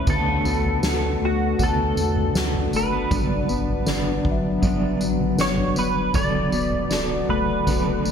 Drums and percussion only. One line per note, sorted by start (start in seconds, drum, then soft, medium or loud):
0.07 kick loud
0.07 floor tom loud
0.07 crash loud
0.07 tambourine medium
0.45 tambourine medium
0.64 floor tom medium
0.83 snare loud
0.83 tambourine medium
1.59 kick medium
1.59 floor tom medium
1.59 tambourine medium
1.97 tambourine medium
2.16 floor tom medium
2.35 snare loud
2.35 tambourine medium
2.55 floor tom medium
2.73 tambourine medium
3.11 kick loud
3.11 floor tom loud
3.11 tambourine medium
3.49 tambourine medium
3.68 floor tom medium
3.86 snare loud
3.86 tambourine medium
4.25 kick loud
4.63 kick medium
4.63 floor tom medium
4.63 tambourine medium
5.01 tambourine medium
5.19 floor tom medium
5.38 snare loud
5.38 tambourine medium
5.58 floor tom medium
5.76 tambourine medium
6.14 kick loud
6.14 floor tom loud
6.14 tambourine medium
6.52 tambourine medium
6.72 floor tom medium
6.91 snare medium
6.91 tambourine medium
7.29 floor tom medium
7.67 kick medium
7.67 floor tom medium
7.67 tambourine medium
8.05 tambourine medium